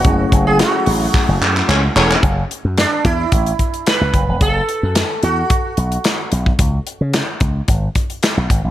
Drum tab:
HH |x-x-x-o---------|x-x-x-x-xxxxx-x-|x-x-x-x-x-xxx-x-|x-x-x-x-x-xxx-x-|
CP |----x---x-xxx-xx|----x-------x---|----x-------x---|----x-------x---|
SD |----o-----------|----o-------o---|----o-------o---|----o-------o---|
BD |o-o-----o-------|o-----o-o-o---o-|o-------o------o|o-----o-o-o---o-|